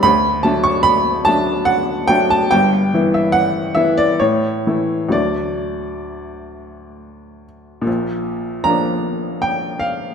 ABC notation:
X:1
M:3/4
L:1/16
Q:1/4=73
K:D
V:1 name="Upright piano"
b2 a c' b2 a2 f2 g a | g3 e f2 e d c4 | d8- d2 z2 | [K:Bb] z4 b4 g2 f2 |]
V:2 name="Upright piano"
D,,2 [F,A,D]4 [F,A,D]4 [F,A,D]2 | [G,,,G,,]2 [E,B,E]4 [E,B,E]2 A,,2 [E,A,E]2 | [D,,F,A,D]12 | [K:Bb] [B,,,B,,]4 [F,B,D]8 |]